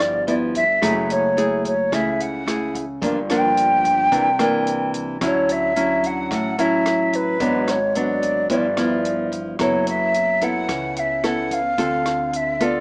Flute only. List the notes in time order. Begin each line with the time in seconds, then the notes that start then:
Already playing: D5
0.28 D5
0.56 E5
1.12 C#5
1.66 C#5
1.94 E5
2.21 F#5
3.30 G5
5.25 C#5
5.52 E5
6.06 F#5
6.32 F#5
6.59 E5
7.15 B4
7.69 C#5
7.96 D5
8.50 D5
9.61 C#5
9.88 E5
10.44 F#5
10.99 E5
11.27 F#5
11.53 F5
12.36 E5
12.63 D5